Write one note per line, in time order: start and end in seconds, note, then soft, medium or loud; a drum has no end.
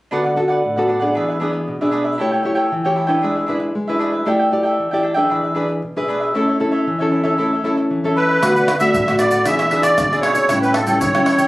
0.11 0.61 D3 medium
0.11 0.34 B3 soft
0.11 0.23 D4 medium
0.11 0.34 F#4 soft
0.11 0.34 A4 soft
0.11 0.24 B4 soft
0.11 0.24 D5 medium
0.11 0.23 F#5 medium
0.24 0.36 B4 soft
0.24 0.36 D5 soft
0.24 0.36 F#5 soft
0.36 0.61 B3 soft
0.36 0.62 F#4 soft
0.36 0.62 A4 soft
0.36 muted cavaquinho stroke soft
0.48 0.75 B4 soft
0.48 0.75 D5 soft
0.48 0.74 F#5 soft
0.65 1.14 A2 medium
0.76 0.99 B3 soft
0.76 0.99 F#4 soft
0.76 1.00 A4 medium
0.76 0.87 B4 soft
0.76 0.88 D5 soft
0.76 0.88 F#5 soft
0.88 1.01 D4 soft
0.88 1.00 B4 soft
0.88 0.99 D5 soft
0.88 0.98 F#5 soft
1.00 1.37 B3 medium
1.00 1.37 D4 medium
1.00 1.37 G#4 medium
1.00 1.14 B4 soft
1.00 1.13 D5 medium
1.00 1.13 F#5 medium
1.15 1.65 E3 medium
1.15 1.27 D4 medium
1.15 1.27 G#4 medium
1.15 1.28 B4 medium
1.15 1.27 E5 medium
1.28 1.40 G#4 soft
1.28 1.40 B4 soft
1.28 1.40 E5 soft
1.40 1.76 B3 soft
1.40 1.51 D4 medium
1.40 1.77 D4 soft
1.40 1.51 G#4 medium
1.40 1.77 G#4 soft
1.40 1.52 B4 medium
1.40 1.52 E5 medium
1.52 muted cavaquinho stroke soft
1.68 2.17 B2 medium
1.81 2.16 B3 soft
1.81 2.16 D4 medium
1.81 2.16 G#4 medium
1.81 1.91 G#4 soft
1.81 1.91 B4 soft
1.81 1.92 E5 soft
1.91 2.04 D4 medium
1.91 2.05 G#4 medium
1.91 2.04 B4 medium
1.91 2.03 E5 medium
2.04 2.18 G#4 soft
2.04 2.18 B4 soft
2.04 2.17 E5 soft
2.18 2.69 A3 medium
2.18 2.31 E4 medium
2.18 2.42 E4 soft
2.18 2.42 G4 soft
2.18 2.31 A4 medium
2.18 2.31 C#5 medium
2.18 2.42 C#5 medium
2.18 2.30 G5 medium
2.31 2.42 A4 soft
2.31 2.43 C#5 soft
2.31 2.43 G5 soft
2.43 2.70 E4 soft
2.43 2.70 G4 soft
2.43 2.70 C#5 soft
2.43 muted cavaquinho stroke soft
2.55 2.83 A4 soft
2.55 2.82 C#5 medium
2.55 2.82 G5 medium
2.72 3.21 E3 medium
2.84 3.07 E4 medium
2.84 3.07 G4 medium
2.84 2.95 A4 soft
2.84 2.96 C#5 soft
2.84 3.07 C#5 medium
2.84 2.96 G5 soft
2.95 3.08 E4 soft
2.95 3.08 A4 soft
2.95 3.07 C#5 soft
2.95 3.06 G5 soft
3.07 3.44 D4 medium
3.07 3.44 E4 medium
3.07 3.22 A4 soft
3.07 3.45 B4 medium
3.07 3.21 C#5 medium
3.07 3.20 G5 medium
3.22 3.73 G#3 medium
3.22 3.35 D4 medium
3.22 3.35 G#4 medium
3.22 3.35 B4 medium
3.22 3.34 E5 medium
3.36 3.46 G#4 soft
3.36 3.47 B4 soft
3.36 3.48 E5 soft
3.46 3.58 D4 medium
3.46 3.73 D4 soft
3.46 3.74 E4 soft
3.46 3.58 G#4 medium
3.46 3.59 B4 medium
3.46 3.74 B4 soft
3.46 3.59 E5 medium
3.60 muted cavaquinho stroke soft
3.75 4.24 G#3 medium
3.88 4.23 D4 medium
3.88 4.23 E4 medium
3.88 3.99 G#4 soft
3.88 4.00 B4 soft
3.88 4.24 B4 medium
3.88 4.00 E5 soft
3.99 4.12 D4 medium
3.99 4.12 G#4 medium
3.99 4.11 B4 medium
3.99 4.10 E5 medium
4.11 4.26 G#4 soft
4.11 4.25 B4 soft
4.11 4.24 E5 soft
4.26 4.76 A3 medium
4.26 4.38 D4 medium
4.26 4.49 E4 soft
4.26 4.49 G4 soft
4.26 4.39 A4 medium
4.26 4.49 D5 soft
4.26 4.39 E5 medium
4.26 4.38 G5 medium
4.39 4.51 A4 soft
4.39 4.51 E5 soft
4.39 4.51 G5 soft
4.51 4.87 E4 soft
4.51 4.88 G4 soft
4.51 4.88 D5 medium
4.51 muted cavaquinho stroke soft
4.63 4.90 A4 soft
4.63 4.90 E5 soft
4.63 4.89 G5 medium
4.79 5.28 E3 medium
4.91 5.14 E4 soft
4.91 5.15 G4 soft
4.91 5.02 A4 soft
4.91 5.15 D5 medium
4.91 5.03 E5 soft
4.91 5.03 G5 soft
5.03 5.16 D4 soft
5.03 5.15 A4 soft
5.03 5.14 E5 soft
5.03 5.13 G5 soft
5.14 5.52 D4 medium
5.14 5.52 G#4 medium
5.14 5.29 A4 medium
5.14 5.53 B4 medium
5.14 5.29 E5 medium
5.14 5.28 G5 medium
5.29 5.80 E3 medium
5.29 5.42 D4 medium
5.29 5.42 G#4 medium
5.29 5.43 B4 medium
5.29 5.42 E5 medium
5.44 5.54 G#4 soft
5.44 5.55 B4 soft
5.44 5.56 E5 soft
5.55 5.67 D4 medium
5.55 5.81 D4 soft
5.55 5.68 G#4 medium
5.55 5.81 G#4 soft
5.55 5.81 B4 soft
5.55 5.68 B4 medium
5.55 5.68 E5 medium
5.68 muted cavaquinho stroke soft
5.82 6.32 B2 medium
5.97 6.31 D4 medium
5.97 6.31 G#4 medium
5.97 6.08 G#4 soft
5.97 6.31 B4 medium
5.97 6.08 B4 soft
5.97 6.08 E5 soft
6.08 6.20 D4 medium
6.08 6.21 G#4 medium
6.08 6.20 B4 medium
6.08 6.19 E5 medium
6.20 6.34 G#4 soft
6.20 6.33 B4 soft
6.20 6.33 E5 soft
6.34 6.84 A3 medium
6.34 6.56 C#4 soft
6.34 6.46 E4 medium
6.34 6.57 E4 soft
6.34 6.47 A4 medium
6.34 6.57 A4 medium
6.34 6.47 C#5 medium
6.34 6.46 E5 medium
6.48 6.59 A4 soft
6.48 6.59 C#5 soft
6.48 6.59 E5 soft
6.60 6.85 C#4 medium
6.60 6.85 E4 soft
6.60 6.85 A4 medium
6.60 muted cavaquinho stroke soft
6.72 6.98 A4 soft
6.72 6.98 C#5 soft
6.72 6.97 E5 medium
6.87 7.36 E3 medium
6.99 7.22 C#4 medium
6.99 7.22 E4 medium
6.99 7.11 A4 soft
6.99 7.23 A4 medium
6.99 7.12 C#5 soft
6.99 7.11 E5 soft
7.11 7.24 E4 soft
7.11 7.24 A4 soft
7.11 7.23 C#5 soft
7.11 7.22 E5 soft
7.23 7.33 C#4 medium
7.23 7.34 E4 medium
7.23 7.34 A4 medium
7.23 7.37 A4 soft
7.23 7.37 C#5 medium
7.23 7.36 E5 medium
7.38 7.88 A3 medium
7.38 7.54 C#4 medium
7.38 7.50 E4 medium
7.38 7.54 E4 soft
7.38 7.50 A4 medium
7.38 7.54 A4 medium
7.38 7.51 C#5 medium
7.38 7.51 E5 medium
7.53 7.64 A4 soft
7.53 7.65 C#5 soft
7.53 7.64 E5 soft
7.64 7.99 C#4 soft
7.64 7.76 E4 medium
7.64 7.99 E4 soft
7.64 7.76 A4 medium
7.64 7.99 A4 medium
7.64 7.76 C#5 medium
7.64 7.77 E5 medium
7.77 muted cavaquinho stroke soft
7.91 8.40 E3 medium
8.04 8.38 C#4 medium
8.04 8.39 E4 medium
8.04 8.39 A4 medium
8.04 8.16 A4 soft
8.04 8.16 C#5 soft
8.04 8.16 E5 soft
8.16 8.28 E4 medium
8.16 8.28 A4 medium
8.16 8.77 B4 medium
8.16 8.29 C#5 medium
8.16 8.28 E5 medium
8.29 8.42 A4 soft
8.29 8.42 C#5 soft
8.29 8.41 E5 soft
8.43 8.92 D3 medium
8.43 8.67 A3 soft
8.43 8.67 B3 medium
8.43 8.54 D4 medium
8.43 8.67 F#4 medium
8.43 8.55 B4 medium
8.43 8.55 D5 medium
8.43 8.55 F#5 medium
8.43 pandeiro medium
8.43 tamborim medium
8.43 shaker medium
8.43 surdo medium
8.56 8.68 B4 soft
8.56 8.68 D5 soft
8.56 8.68 F#5 soft
8.56 pandeiro soft
8.56 shaker soft
8.68 muted cavaquinho stroke soft
8.68 pandeiro medium
8.68 tamborim medium
8.79 9.02 A3 medium
8.79 9.03 B3 medium
8.79 9.03 F#4 medium
8.79 9.07 B4 soft
8.79 9.06 D5 medium
8.79 9.16 E5 loud
8.79 9.06 F#5 medium
8.79 pandeiro soft
8.79 shaker medium
8.94 9.44 A2 medium
8.94 pandeiro medium
8.94 shaker medium
8.94 surdo medium
9.08 9.42 A3 medium
9.08 9.43 B3 medium
9.08 9.43 F#4 medium
9.08 9.19 B4 soft
9.08 9.20 D5 soft
9.08 9.20 F#5 soft
9.08 pandeiro soft
9.08 tamborim medium
9.08 shaker soft
9.18 9.32 D4 soft
9.18 9.32 B4 soft
9.18 9.46 D5 medium
9.18 9.32 D5 soft
9.18 9.31 F#5 medium
9.18 pandeiro medium
9.18 tamborim medium
9.18 shaker medium
9.31 9.45 B4 soft
9.31 9.45 D5 medium
9.31 9.44 F#5 medium
9.31 pandeiro medium
9.31 shaker medium
9.46 9.96 E3 medium
9.46 9.68 B3 medium
9.46 9.58 D4 medium
9.46 9.68 D4 medium
9.46 9.58 G#4 medium
9.46 9.69 G#4 medium
9.46 9.59 B4 medium
9.46 9.82 E5 medium
9.46 9.58 E5 medium
9.46 pandeiro medium
9.46 tamborim medium
9.46 shaker medium
9.46 surdo medium
9.59 9.71 G#4 soft
9.59 9.71 B4 soft
9.59 9.71 E5 medium
9.59 pandeiro soft
9.59 tamborim medium
9.59 shaker soft
9.71 10.06 B3 soft
9.71 9.83 D4 medium
9.71 10.07 D4 medium
9.71 9.83 G#4 medium
9.71 10.07 G#4 soft
9.71 9.84 B4 medium
9.71 9.84 E5 medium
9.71 pandeiro medium
9.82 10.20 D5 medium
9.82 muted cavaquinho stroke soft
9.82 pandeiro medium
9.82 tamborim medium
9.82 shaker medium
9.98 10.48 B2 medium
9.98 pandeiro medium
9.98 tamborim medium
9.98 shaker medium
9.98 surdo medium
10.12 10.46 B3 medium
10.12 10.46 D4 medium
10.12 10.46 G#4 medium
10.12 10.23 G#4 soft
10.12 10.23 B4 soft
10.12 10.23 E5 soft
10.12 pandeiro soft
10.12 shaker soft
10.21 10.35 D4 medium
10.21 10.36 G#4 medium
10.21 10.35 B4 medium
10.21 10.58 C#5 medium
10.21 10.34 E5 medium
10.21 pandeiro medium
10.21 tamborim medium
10.35 10.49 G#4 soft
10.35 10.48 B4 soft
10.35 10.48 E5 soft
10.35 pandeiro medium
10.35 shaker medium
10.49 10.99 A2 medium
10.49 10.74 G3 medium
10.49 10.74 C#4 medium
10.49 10.61 E4 medium
10.49 10.74 E4 medium
10.49 10.62 A4 medium
10.49 10.62 C#5 medium
10.49 10.62 G5 medium
10.49 pandeiro medium
10.49 tamborim medium
10.49 shaker medium
10.49 surdo medium
10.62 10.76 B4 medium
10.62 10.74 C#5 soft
10.62 10.75 G5 soft
10.62 pandeiro soft
10.62 shaker soft
10.66 10.74 A4 soft
10.73 10.98 A4 medium
10.73 muted cavaquinho stroke soft
10.73 pandeiro medium
10.73 tamborim medium
10.87 11.09 G3 soft
10.87 11.09 C#4 medium
10.87 11.10 E4 medium
10.87 11.14 A4 soft
10.87 11.13 C#5 medium
10.87 11.13 G5 medium
10.87 pandeiro medium
10.87 shaker medium
10.99 11.48 E3 medium
10.99 11.48 C#5 medium
10.99 pandeiro medium
10.99 shaker medium
10.99 surdo medium
11.15 11.48 G3 medium
11.15 11.48 C#4 medium
11.15 11.48 E4 medium
11.15 11.26 A4 soft
11.15 11.26 C#5 soft
11.15 11.27 G5 soft
11.15 pandeiro soft
11.15 tamborim medium
11.15 shaker soft
11.26 11.39 E4 soft
11.26 11.38 A4 medium
11.26 11.37 C#5 medium
11.26 11.36 G5 medium
11.26 pandeiro medium
11.26 tamborim medium
11.38 11.48 A4 medium
11.38 11.48 C#5 medium
11.38 11.48 G5 medium
11.38 pandeiro medium
11.38 shaker medium